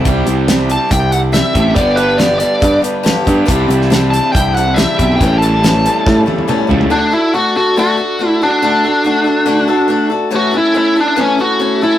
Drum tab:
HH |x-x-x-x-x-x-x-x-|x-x-x-x-x-x-x-x-|x-x-x-x-x-x-x-x-|x-x-x-x---------|
SD |----o-------o---|----o-------o---|---oo-------o---|----o---o-------|
T1 |----------------|----------------|----------------|----------oo----|
T2 |----------------|----------------|----------------|------------o---|
FT |----------------|----------------|----------------|--------------oo|
BD |o-------o-----o-|o-------o-----o-|o-------o-----o-|o-------o-------|

HH |----------------|----------------|----------------|
SD |----------------|----------------|----------------|
T1 |----------------|----------------|----------------|
T2 |----------------|----------------|----------------|
FT |----------------|----------------|----------------|
BD |----------------|----------------|----------------|